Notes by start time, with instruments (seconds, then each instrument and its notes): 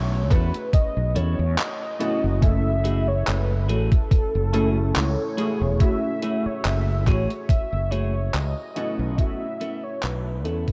Already playing: fretless electric bass B1, synth keys A3 C#4 E4 F#4, soft synth lead C#5
0.31 fretless electric bass E2, clean electric guitar B3 C#4 E4 A4, soft synth lead B4, kick, clap, closed hi-hat
0.54 closed hi-hat
0.73 soft synth lead D#5, kick, closed hi-hat
0.97 fretless electric bass B1
1.15 fretless electric bass E2, clean electric guitar B3 C#4 E4 A4, soft synth lead C#5, closed hi-hat
1.39 fretless electric bass E2
1.58 soft synth lead D#5, clap, closed hi-hat
1.99 synth keys A3 C#4 E4 F#4, clean electric guitar B3 C#4 E4 A4, closed hi-hat
2.24 fretless electric bass F#1
2.41 synth keys A3 C#4 E4 A4, soft synth lead E5, kick, closed hi-hat
2.84 clean electric guitar A3 E4 F#4 G#4, closed hi-hat
3.08 soft synth lead C#5
3.27 fretless electric bass F#1, soft synth lead B4, clap, closed hi-hat
3.64 soft synth lead B4
3.69 fretless electric bass A1, clean electric guitar A3 E4 F#4 G#4, soft synth lead A4, closed hi-hat
3.92 kick, closed hi-hat
4.11 muted fretless electric bass stroke, kick, closed hi-hat
4.35 fretless electric bass F#1
4.53 synth keys A3 C#4 E4 A4, clean electric guitar A3 E4 F#4 G#4, closed hi-hat
4.96 fretless electric bass C#2, soft synth lead C#5, clap, closed hi-hat
5.37 synth keys A3 C#4 E4 G#4, clean electric guitar A3 E4 F#4 G#4, closed hi-hat
5.61 fretless electric bass E1
5.79 synth keys A3 C#4 E4 F#4, soft synth lead E5, kick, closed hi-hat
6.22 clean electric guitar A3 E4 F#4 G#4, closed hi-hat
6.46 soft synth lead C#5, muted fretless electric bass stroke
6.65 fretless electric bass F#1, soft synth lead E5, clap, closed hi-hat
7.07 fretless electric bass A1, clean electric guitar A3 E4 F#4 G#4, soft synth lead C#5, kick, clap, closed hi-hat
7.30 closed hi-hat
7.49 soft synth lead E5, kick, closed hi-hat
7.73 fretless electric bass F#1
7.91 clean electric guitar A3 E4 F#4 G#4, soft synth lead C#5, closed hi-hat
8.34 fretless electric bass C#2, soft synth lead D#5, clap, closed hi-hat
8.75 synth keys A3 C#4 E4 F#4, clean electric guitar B3 C#4 E4 A4, closed hi-hat
8.99 fretless electric bass B1
9.17 synth keys A3 C#4 E4 F#4, soft synth lead E5, kick, closed hi-hat
9.61 clean electric guitar B3 C#4 E4 A4, closed hi-hat
9.83 soft synth lead C#5
10.03 fretless electric bass B1, soft synth lead B4, clap, closed hi-hat
10.45 fretless electric bass E2, clean electric guitar B3 C#4 E4 B4, soft synth lead A4, closed hi-hat
10.68 kick, closed hi-hat